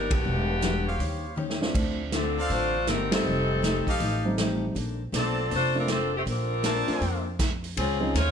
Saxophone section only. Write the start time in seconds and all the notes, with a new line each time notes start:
Already playing: G3 D4 D#4 A#4
0.13 D3 B3 F#4 G4
2.14 F3 C4 D4 A4
2.51 A3 D4 F4 C5
2.88 G3 C4 D#4 A#4
3.13 G3 C4 D#4 A4
5.17 F3 C4 D4 A4
5.54 A3 D4 F4 C5
5.79 F3 C4 D4 A#4
5.91 F3 C4 D4 A4
6.16 D#3 A3 C4 G4
6.29 F3 C4 D4 A#4
7.78 F3 C4 C#4 G#4
8.17 G#3 F4 C5 C#5